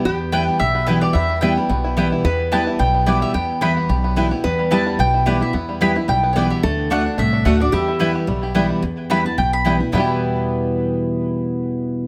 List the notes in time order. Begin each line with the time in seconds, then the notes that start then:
0.05 E2 B3 G4
0.32 E3 G3 B3 E4 B4 G5
0.48 B3
0.59 B1 B2 G4 E5
0.75 B3
0.86 E3 G3 B3 E4 B4 G5
1.01 G4 D5
1.13 E2 B3 E5
1.30 G3
1.41 E3 G3 B3 E4 B4 G5
1.57 G3 B3 E4
1.69 B1 B2 B3
1.84 E4
1.97 E3 G3 B3 E4 G4 B4 G5
2.12 E4
2.24 E2 B3 B4
2.52 E3 G3 B3 E4 G4 B4 G5 A5
2.67 E4
2.79 B1 B2 G3 G5
2.94 B3
3.06 E3 G3 B3 E4 B4 D5 G5
3.22 G4 E5
3.34 E2 B3 G5
3.61 E3 G3 B3 E4 B4 G5 B5
3.77 B3
3.89 B1 B2 G4
4.04 B3
4.16 E3 G3 B3 E4 B4 G5
4.31 B3 E4 G4
4.44 E2 B3 B4
4.59 G3
4.71 E3 G3 B3 E4 B4 G5 A5
4.87 G3
4.99 B1 B2 B3 G5
5.14 E4
5.26 E3 G3 B3 E4 G4 B4 D5 G5
5.41 B3 E4 E5
5.53 E2 B3
5.69 G3
5.81 E3 G3 B3 E4 G4 B4 G5 B5
5.96 B3 E4
6.08 B1 B2 G3 G5
6.23 B3
6.33 E3 G3 B3 E4 B4 C#5 D5 G5
6.37 E4
6.50 G4 E5
6.63 D2 D3 A3 A4
6.90 D3 A3 D4 F#4 D5 F#5
7.06 D4
7.18 C2 A2 A3 E5
7.33 D4
7.45 D2 D3 A3 D4 F#4 D5 F#5
7.60 D4 F#4 D5
7.72 E2 G3 G4 E5
7.88 E4
7.99 E3 G3 B3 E4 B4 G5
8.15 G4
8.27 B1 B2 G3
8.43 G4
8.55 E3 G3 B3 E4 B4 G5
8.70 E4
8.82 E2
9.10 E3 G3 B3 E4 B4 G5 B5
9.25 B3 E4 A5
9.38 B1 B2 G5
9.53 B5
9.65 E3 G3 B3 E4 B4 G5
9.80 B3 E4
9.92 E2 B2 E3 G3 B3 E4 B4 G5
9.97 E4 G4